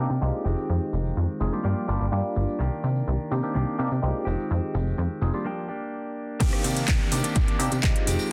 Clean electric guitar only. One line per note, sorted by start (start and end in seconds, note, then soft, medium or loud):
0.00 0.46 A#3 soft
0.00 0.45 D4 medium
0.00 0.44 G4 medium
0.45 1.63 D#3 medium
0.45 1.64 G#3 medium
0.45 1.65 C4 medium
0.45 1.65 G4 medium
1.63 1.88 F3 medium
1.63 1.88 A#3 medium
1.63 1.87 D4 medium
1.63 1.86 G4 medium
1.88 2.59 A#3 soft
1.88 2.60 D4 medium
1.88 2.61 G4 medium
2.59 3.53 D#3 medium
2.59 3.54 A#3 medium
2.59 3.54 D4 medium
2.59 3.56 G4 medium
3.54 3.78 D#3 medium
3.54 3.79 A#3 medium
3.54 3.78 D4 medium
3.54 3.77 G4 medium
3.78 4.27 A#3 soft
3.78 4.26 D4 medium
3.78 4.25 G4 medium
4.25 5.44 D#3 medium
4.25 5.45 G#3 medium
4.25 5.45 C4 medium
4.25 5.46 G4 medium
5.44 5.69 F3 medium
5.44 5.69 A#3 medium
5.44 5.68 D4 medium
5.44 5.67 G4 medium
5.68 6.39 A#3 soft
5.68 6.40 D4 medium
5.68 6.41 G4 medium
6.40 6.62 D#3 medium
6.40 6.63 A#3 loud
6.40 6.64 D4 loud
6.40 6.64 G4 loud
6.64 6.86 D#3 medium
6.64 6.87 A#3 medium
6.64 6.87 D4 medium
6.64 6.88 G4 medium
6.89 7.12 G4 loud
7.11 7.24 D#3 medium
7.11 7.24 A#3 medium
7.11 7.24 D4 medium
7.11 7.23 G4 medium
7.24 7.48 A#3 medium
7.24 7.47 D4 medium
7.24 7.46 G4 medium
7.48 7.59 A#3 medium
7.48 7.59 D4 medium
7.48 7.59 G4 medium
7.59 7.81 D#3 medium
7.59 7.82 A#3 medium
7.59 7.82 D4 medium
7.59 7.83 G4 medium
7.83 7.95 D#3 medium
7.95 8.07 A#3 medium
7.95 8.07 D4 medium
7.95 8.07 G4 medium
8.07 8.32 D#3 medium
8.07 8.32 G#3 medium
8.07 8.32 C4 medium
8.07 8.32 G4 loud